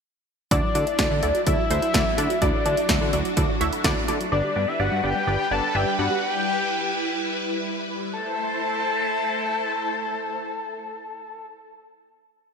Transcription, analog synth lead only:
0, 0, Header, 1, 2, 480
1, 0, Start_track
1, 0, Tempo, 476190
1, 517, Time_signature, 4, 2, 24, 8
1, 12636, End_track
2, 0, Start_track
2, 0, Title_t, "Analog synth lead"
2, 0, Program_c, 0, 81
2, 517, Note_on_c, 0, 74, 102
2, 1437, Note_off_c, 0, 74, 0
2, 1478, Note_on_c, 0, 76, 121
2, 2437, Note_on_c, 0, 74, 99
2, 2452, Note_off_c, 0, 76, 0
2, 3157, Note_off_c, 0, 74, 0
2, 4357, Note_on_c, 0, 74, 94
2, 4719, Note_on_c, 0, 76, 86
2, 4734, Note_off_c, 0, 74, 0
2, 4838, Note_on_c, 0, 78, 93
2, 4853, Note_off_c, 0, 76, 0
2, 5079, Note_on_c, 0, 79, 92
2, 5094, Note_off_c, 0, 78, 0
2, 5308, Note_off_c, 0, 79, 0
2, 5314, Note_on_c, 0, 79, 111
2, 5558, Note_on_c, 0, 81, 106
2, 5573, Note_off_c, 0, 79, 0
2, 5797, Note_on_c, 0, 79, 106
2, 5812, Note_off_c, 0, 81, 0
2, 6029, Note_off_c, 0, 79, 0
2, 6035, Note_on_c, 0, 78, 99
2, 6259, Note_off_c, 0, 78, 0
2, 6275, Note_on_c, 0, 79, 105
2, 7196, Note_off_c, 0, 79, 0
2, 8198, Note_on_c, 0, 81, 95
2, 11554, Note_off_c, 0, 81, 0
2, 12636, End_track
0, 0, End_of_file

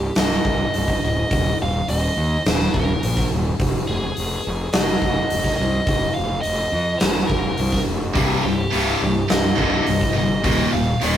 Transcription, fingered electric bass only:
0, 0, Header, 1, 2, 480
1, 0, Start_track
1, 0, Key_signature, -3, "minor"
1, 0, Tempo, 571429
1, 1098, Time_signature, 4, 2, 24, 8
1, 9384, End_track
2, 0, Start_track
2, 0, Title_t, "Fingered electric bass"
2, 0, Program_c, 0, 33
2, 143, Note_on_c, 0, 24, 87
2, 304, Note_off_c, 0, 24, 0
2, 378, Note_on_c, 0, 24, 75
2, 541, Note_off_c, 0, 24, 0
2, 635, Note_on_c, 0, 24, 76
2, 791, Note_off_c, 0, 24, 0
2, 872, Note_on_c, 0, 26, 82
2, 1029, Note_off_c, 0, 26, 0
2, 1107, Note_on_c, 0, 27, 93
2, 1266, Note_off_c, 0, 27, 0
2, 1351, Note_on_c, 0, 27, 95
2, 1509, Note_off_c, 0, 27, 0
2, 1579, Note_on_c, 0, 27, 78
2, 1740, Note_off_c, 0, 27, 0
2, 1820, Note_on_c, 0, 39, 95
2, 1981, Note_off_c, 0, 39, 0
2, 2065, Note_on_c, 0, 27, 96
2, 2224, Note_off_c, 0, 27, 0
2, 2307, Note_on_c, 0, 27, 88
2, 2465, Note_off_c, 0, 27, 0
2, 2547, Note_on_c, 0, 34, 85
2, 2705, Note_off_c, 0, 34, 0
2, 2786, Note_on_c, 0, 27, 83
2, 2945, Note_off_c, 0, 27, 0
2, 3024, Note_on_c, 0, 29, 96
2, 3183, Note_off_c, 0, 29, 0
2, 3270, Note_on_c, 0, 29, 91
2, 3427, Note_off_c, 0, 29, 0
2, 3510, Note_on_c, 0, 29, 76
2, 3667, Note_off_c, 0, 29, 0
2, 3751, Note_on_c, 0, 29, 99
2, 3907, Note_off_c, 0, 29, 0
2, 3984, Note_on_c, 0, 29, 94
2, 4143, Note_off_c, 0, 29, 0
2, 4217, Note_on_c, 0, 29, 93
2, 4378, Note_off_c, 0, 29, 0
2, 4475, Note_on_c, 0, 29, 83
2, 4630, Note_off_c, 0, 29, 0
2, 4707, Note_on_c, 0, 36, 76
2, 4865, Note_off_c, 0, 36, 0
2, 4929, Note_on_c, 0, 29, 102
2, 5093, Note_off_c, 0, 29, 0
2, 5183, Note_on_c, 0, 29, 94
2, 5342, Note_off_c, 0, 29, 0
2, 5420, Note_on_c, 0, 29, 78
2, 5580, Note_off_c, 0, 29, 0
2, 5646, Note_on_c, 0, 41, 93
2, 5811, Note_off_c, 0, 41, 0
2, 5889, Note_on_c, 0, 29, 86
2, 6053, Note_off_c, 0, 29, 0
2, 6131, Note_on_c, 0, 29, 73
2, 6294, Note_off_c, 0, 29, 0
2, 6372, Note_on_c, 0, 36, 80
2, 6535, Note_off_c, 0, 36, 0
2, 6614, Note_on_c, 0, 29, 77
2, 6849, Note_off_c, 0, 29, 0
2, 6849, Note_on_c, 0, 24, 95
2, 7013, Note_off_c, 0, 24, 0
2, 7093, Note_on_c, 0, 24, 89
2, 7256, Note_off_c, 0, 24, 0
2, 7332, Note_on_c, 0, 24, 78
2, 7495, Note_off_c, 0, 24, 0
2, 7576, Note_on_c, 0, 24, 96
2, 7738, Note_off_c, 0, 24, 0
2, 7819, Note_on_c, 0, 24, 85
2, 7980, Note_off_c, 0, 24, 0
2, 8053, Note_on_c, 0, 24, 88
2, 8216, Note_off_c, 0, 24, 0
2, 8297, Note_on_c, 0, 24, 79
2, 8459, Note_off_c, 0, 24, 0
2, 8536, Note_on_c, 0, 31, 85
2, 8775, Note_off_c, 0, 31, 0
2, 8775, Note_on_c, 0, 27, 92
2, 8938, Note_off_c, 0, 27, 0
2, 9013, Note_on_c, 0, 27, 94
2, 9177, Note_off_c, 0, 27, 0
2, 9253, Note_on_c, 0, 27, 90
2, 9384, Note_off_c, 0, 27, 0
2, 9384, End_track
0, 0, End_of_file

